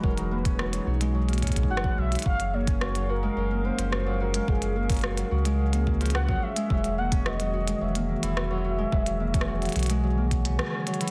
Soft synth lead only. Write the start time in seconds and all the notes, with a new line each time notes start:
0.03 A#4
0.31 B4
1.70 F#5
1.98 E5
2.26 F5
2.54 C#5
3.09 A#4
3.65 C5
4.20 A#4
4.48 G#4
4.76 A#4
6.15 F#5
6.43 E5
6.98 F#5
7.26 D#5
7.81 E5